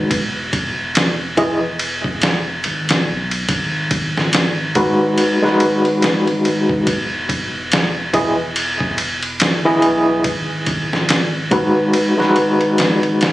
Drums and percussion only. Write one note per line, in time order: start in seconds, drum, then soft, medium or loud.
0.11 kick loud
0.11 ride medium
0.53 kick loud
0.53 ride medium
0.95 snare loud
0.95 ride medium
1.37 kick medium
1.37 ride medium
1.79 ride medium
2.04 kick medium
2.22 snare loud
2.22 ride medium
2.64 ride medium
2.89 snare loud
2.89 ride medium
3.31 ride medium
3.49 kick loud
3.49 ride medium
3.91 kick medium
3.91 ride medium
4.17 snare soft
4.33 snare loud
4.33 ride medium
4.75 kick loud
4.75 ride medium
5.18 ride medium
5.44 snare soft
5.60 ride medium
5.85 ride soft
6.02 snare loud
6.02 ride medium
6.27 ride soft
6.45 ride medium
6.69 kick loud
6.87 kick loud
6.87 ride medium
7.29 kick loud
7.29 ride medium
7.72 snare loud
7.72 ride medium
8.14 kick loud
8.14 ride medium
8.56 ride medium
8.80 kick loud
8.98 ride medium
9.23 ride soft
9.40 snare loud
9.40 ride medium
9.82 ride medium
10.24 kick loud
10.24 ride medium
10.66 kick medium
10.66 ride medium
10.93 snare medium
11.09 snare loud
11.09 ride medium
11.51 kick loud
11.51 ride medium
11.93 ride medium
12.20 snare soft
12.36 ride medium
12.61 ride soft
12.78 snare loud
12.78 ride loud
13.03 ride soft
13.21 snare loud
13.21 ride medium